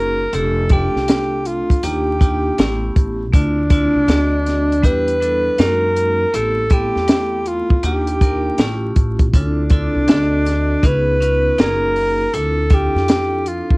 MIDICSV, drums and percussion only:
0, 0, Header, 1, 2, 480
1, 0, Start_track
1, 0, Tempo, 750000
1, 214, Time_signature, 4, 2, 24, 8
1, 8817, End_track
2, 0, Start_track
2, 0, Title_t, "Drums"
2, 212, Note_on_c, 9, 42, 90
2, 276, Note_off_c, 9, 42, 0
2, 445, Note_on_c, 9, 42, 74
2, 449, Note_on_c, 9, 36, 95
2, 509, Note_off_c, 9, 42, 0
2, 513, Note_off_c, 9, 36, 0
2, 616, Note_on_c, 9, 38, 33
2, 680, Note_off_c, 9, 38, 0
2, 692, Note_on_c, 9, 42, 96
2, 701, Note_on_c, 9, 38, 105
2, 756, Note_off_c, 9, 42, 0
2, 765, Note_off_c, 9, 38, 0
2, 930, Note_on_c, 9, 42, 61
2, 994, Note_off_c, 9, 42, 0
2, 1088, Note_on_c, 9, 36, 84
2, 1095, Note_on_c, 9, 42, 50
2, 1152, Note_off_c, 9, 36, 0
2, 1159, Note_off_c, 9, 42, 0
2, 1171, Note_on_c, 9, 42, 98
2, 1235, Note_off_c, 9, 42, 0
2, 1413, Note_on_c, 9, 36, 86
2, 1417, Note_on_c, 9, 42, 63
2, 1477, Note_off_c, 9, 36, 0
2, 1481, Note_off_c, 9, 42, 0
2, 1652, Note_on_c, 9, 42, 84
2, 1662, Note_on_c, 9, 38, 110
2, 1716, Note_off_c, 9, 42, 0
2, 1726, Note_off_c, 9, 38, 0
2, 1895, Note_on_c, 9, 36, 91
2, 1895, Note_on_c, 9, 42, 65
2, 1959, Note_off_c, 9, 36, 0
2, 1959, Note_off_c, 9, 42, 0
2, 2134, Note_on_c, 9, 36, 107
2, 2136, Note_on_c, 9, 42, 87
2, 2198, Note_off_c, 9, 36, 0
2, 2200, Note_off_c, 9, 42, 0
2, 2369, Note_on_c, 9, 42, 69
2, 2371, Note_on_c, 9, 36, 96
2, 2433, Note_off_c, 9, 42, 0
2, 2435, Note_off_c, 9, 36, 0
2, 2612, Note_on_c, 9, 42, 97
2, 2622, Note_on_c, 9, 38, 107
2, 2676, Note_off_c, 9, 42, 0
2, 2686, Note_off_c, 9, 38, 0
2, 2856, Note_on_c, 9, 42, 59
2, 2866, Note_on_c, 9, 38, 33
2, 2920, Note_off_c, 9, 42, 0
2, 2930, Note_off_c, 9, 38, 0
2, 3020, Note_on_c, 9, 42, 48
2, 3084, Note_off_c, 9, 42, 0
2, 3093, Note_on_c, 9, 36, 87
2, 3096, Note_on_c, 9, 42, 91
2, 3157, Note_off_c, 9, 36, 0
2, 3160, Note_off_c, 9, 42, 0
2, 3249, Note_on_c, 9, 42, 51
2, 3313, Note_off_c, 9, 42, 0
2, 3342, Note_on_c, 9, 42, 65
2, 3406, Note_off_c, 9, 42, 0
2, 3573, Note_on_c, 9, 42, 87
2, 3583, Note_on_c, 9, 38, 107
2, 3637, Note_off_c, 9, 42, 0
2, 3647, Note_off_c, 9, 38, 0
2, 3816, Note_on_c, 9, 42, 68
2, 3880, Note_off_c, 9, 42, 0
2, 4055, Note_on_c, 9, 42, 98
2, 4119, Note_off_c, 9, 42, 0
2, 4286, Note_on_c, 9, 42, 70
2, 4291, Note_on_c, 9, 36, 90
2, 4350, Note_off_c, 9, 42, 0
2, 4355, Note_off_c, 9, 36, 0
2, 4454, Note_on_c, 9, 38, 31
2, 4518, Note_off_c, 9, 38, 0
2, 4530, Note_on_c, 9, 42, 100
2, 4539, Note_on_c, 9, 38, 108
2, 4594, Note_off_c, 9, 42, 0
2, 4603, Note_off_c, 9, 38, 0
2, 4773, Note_on_c, 9, 42, 59
2, 4837, Note_off_c, 9, 42, 0
2, 4930, Note_on_c, 9, 36, 89
2, 4994, Note_off_c, 9, 36, 0
2, 5012, Note_on_c, 9, 42, 93
2, 5076, Note_off_c, 9, 42, 0
2, 5165, Note_on_c, 9, 42, 52
2, 5229, Note_off_c, 9, 42, 0
2, 5254, Note_on_c, 9, 36, 91
2, 5256, Note_on_c, 9, 42, 65
2, 5318, Note_off_c, 9, 36, 0
2, 5320, Note_off_c, 9, 42, 0
2, 5490, Note_on_c, 9, 42, 88
2, 5500, Note_on_c, 9, 38, 105
2, 5554, Note_off_c, 9, 42, 0
2, 5564, Note_off_c, 9, 38, 0
2, 5734, Note_on_c, 9, 42, 69
2, 5736, Note_on_c, 9, 36, 88
2, 5798, Note_off_c, 9, 42, 0
2, 5800, Note_off_c, 9, 36, 0
2, 5883, Note_on_c, 9, 42, 54
2, 5884, Note_on_c, 9, 36, 88
2, 5947, Note_off_c, 9, 42, 0
2, 5948, Note_off_c, 9, 36, 0
2, 5975, Note_on_c, 9, 36, 106
2, 5976, Note_on_c, 9, 42, 90
2, 6039, Note_off_c, 9, 36, 0
2, 6040, Note_off_c, 9, 42, 0
2, 6206, Note_on_c, 9, 42, 70
2, 6211, Note_on_c, 9, 36, 88
2, 6270, Note_off_c, 9, 42, 0
2, 6275, Note_off_c, 9, 36, 0
2, 6450, Note_on_c, 9, 42, 102
2, 6459, Note_on_c, 9, 38, 112
2, 6514, Note_off_c, 9, 42, 0
2, 6523, Note_off_c, 9, 38, 0
2, 6696, Note_on_c, 9, 42, 65
2, 6707, Note_on_c, 9, 38, 34
2, 6760, Note_off_c, 9, 42, 0
2, 6771, Note_off_c, 9, 38, 0
2, 6932, Note_on_c, 9, 36, 85
2, 6935, Note_on_c, 9, 42, 92
2, 6996, Note_off_c, 9, 36, 0
2, 6999, Note_off_c, 9, 42, 0
2, 7180, Note_on_c, 9, 42, 65
2, 7244, Note_off_c, 9, 42, 0
2, 7413, Note_on_c, 9, 42, 88
2, 7422, Note_on_c, 9, 38, 116
2, 7477, Note_off_c, 9, 42, 0
2, 7486, Note_off_c, 9, 38, 0
2, 7653, Note_on_c, 9, 46, 47
2, 7717, Note_off_c, 9, 46, 0
2, 7895, Note_on_c, 9, 42, 90
2, 7959, Note_off_c, 9, 42, 0
2, 8127, Note_on_c, 9, 42, 69
2, 8131, Note_on_c, 9, 36, 94
2, 8191, Note_off_c, 9, 42, 0
2, 8195, Note_off_c, 9, 36, 0
2, 8299, Note_on_c, 9, 38, 33
2, 8363, Note_off_c, 9, 38, 0
2, 8373, Note_on_c, 9, 42, 97
2, 8382, Note_on_c, 9, 38, 111
2, 8437, Note_off_c, 9, 42, 0
2, 8446, Note_off_c, 9, 38, 0
2, 8614, Note_on_c, 9, 42, 60
2, 8678, Note_off_c, 9, 42, 0
2, 8771, Note_on_c, 9, 36, 82
2, 8817, Note_off_c, 9, 36, 0
2, 8817, End_track
0, 0, End_of_file